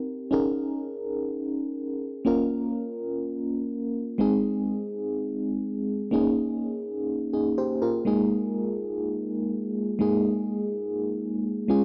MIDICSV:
0, 0, Header, 1, 2, 480
1, 0, Start_track
1, 0, Tempo, 483871
1, 318, Time_signature, 4, 2, 24, 8
1, 11750, End_track
2, 0, Start_track
2, 0, Title_t, "FM electric piano"
2, 0, Program_c, 0, 5
2, 0, Control_c, 0, 64, 127
2, 0, Note_on_c, 0, 60, 68
2, 0, Note_on_c, 0, 63, 65
2, 0, Note_on_c, 0, 67, 61
2, 0, Note_on_c, 0, 70, 72
2, 274, Note_off_c, 0, 60, 0
2, 279, Note_off_c, 0, 63, 0
2, 283, Note_off_c, 0, 67, 0
2, 287, Note_off_c, 0, 70, 0
2, 306, Note_on_c, 0, 61, 65
2, 314, Note_on_c, 0, 63, 60
2, 322, Note_on_c, 0, 68, 64
2, 329, Note_on_c, 0, 70, 76
2, 330, Control_c, 0, 64, 0
2, 528, Control_c, 0, 64, 127
2, 2193, Note_off_c, 0, 61, 0
2, 2198, Note_off_c, 0, 63, 0
2, 2201, Note_off_c, 0, 68, 0
2, 2205, Note_off_c, 0, 70, 0
2, 2229, Note_on_c, 0, 58, 68
2, 2237, Note_on_c, 0, 61, 67
2, 2245, Note_on_c, 0, 65, 65
2, 2249, Control_c, 0, 64, 0
2, 2253, Note_on_c, 0, 70, 81
2, 2437, Control_c, 0, 64, 127
2, 4115, Note_off_c, 0, 58, 0
2, 4119, Note_off_c, 0, 61, 0
2, 4123, Note_off_c, 0, 65, 0
2, 4127, Note_off_c, 0, 70, 0
2, 4149, Note_on_c, 0, 56, 71
2, 4157, Note_on_c, 0, 60, 65
2, 4166, Note_on_c, 0, 63, 62
2, 4173, Control_c, 0, 64, 0
2, 4174, Note_on_c, 0, 68, 79
2, 4329, Control_c, 0, 64, 127
2, 6035, Note_off_c, 0, 56, 0
2, 6039, Note_off_c, 0, 60, 0
2, 6044, Note_off_c, 0, 63, 0
2, 6048, Note_off_c, 0, 68, 0
2, 6064, Note_on_c, 0, 58, 75
2, 6072, Note_on_c, 0, 61, 66
2, 6080, Note_on_c, 0, 63, 70
2, 6088, Note_on_c, 0, 68, 76
2, 6090, Control_c, 0, 64, 0
2, 6242, Control_c, 0, 64, 127
2, 7255, Note_off_c, 0, 63, 0
2, 7259, Note_off_c, 0, 68, 0
2, 7275, Note_on_c, 0, 68, 60
2, 7280, Note_on_c, 0, 63, 49
2, 7504, Note_off_c, 0, 68, 0
2, 7507, Note_off_c, 0, 63, 0
2, 7518, Note_on_c, 0, 72, 70
2, 7523, Note_on_c, 0, 67, 61
2, 7746, Note_off_c, 0, 72, 0
2, 7749, Note_off_c, 0, 67, 0
2, 7756, Note_on_c, 0, 70, 65
2, 7764, Note_on_c, 0, 65, 54
2, 7952, Note_off_c, 0, 58, 0
2, 7957, Note_off_c, 0, 61, 0
2, 7986, Note_on_c, 0, 56, 72
2, 7994, Note_on_c, 0, 58, 69
2, 8002, Note_on_c, 0, 63, 64
2, 8010, Note_on_c, 0, 68, 80
2, 8011, Control_c, 0, 64, 0
2, 8192, Control_c, 0, 64, 127
2, 8213, Note_off_c, 0, 70, 0
2, 8217, Note_off_c, 0, 65, 0
2, 9873, Note_off_c, 0, 56, 0
2, 9878, Note_off_c, 0, 58, 0
2, 9882, Note_off_c, 0, 63, 0
2, 9886, Note_off_c, 0, 68, 0
2, 9909, Note_on_c, 0, 56, 74
2, 9918, Note_on_c, 0, 58, 65
2, 9925, Note_on_c, 0, 63, 66
2, 9934, Note_on_c, 0, 68, 83
2, 11560, Note_off_c, 0, 56, 0
2, 11564, Note_off_c, 0, 58, 0
2, 11568, Note_off_c, 0, 63, 0
2, 11573, Note_off_c, 0, 68, 0
2, 11589, Note_on_c, 0, 56, 74
2, 11599, Note_on_c, 0, 61, 66
2, 11605, Note_on_c, 0, 65, 70
2, 11612, Control_c, 0, 64, 0
2, 11614, Note_on_c, 0, 68, 83
2, 11750, Note_off_c, 0, 56, 0
2, 11750, Note_off_c, 0, 61, 0
2, 11750, Note_off_c, 0, 65, 0
2, 11750, Note_off_c, 0, 68, 0
2, 11750, End_track
0, 0, End_of_file